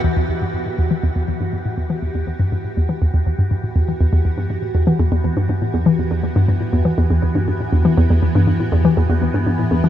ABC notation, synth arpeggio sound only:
X:1
M:4/4
L:1/16
Q:1/4=121
K:Em
V:1 name="Synth arpeggio sound" clef=bass
E,, E,, E,, G,, G,, A,, E,, E, E,, E,, E,, G,, G,, A,, E,, E, | E,, E,, E,, G,, G,, A,, E,, E, E,, E,, E,, G,, G,, A,, E,, E, | E,, E,, E,, G,, G,, A,, E,, E, E,, E,, E,, G,, G,, A,, E,, E, | E,, E,, E,, G,, G,, A,, E,, E, E,, E,, E,, G,, G,, A,, E,, E, |
E,, E,, E,, G,, G,, A,, E,, E, E,, E,, E,, G,, G,, A,, E,, E, |]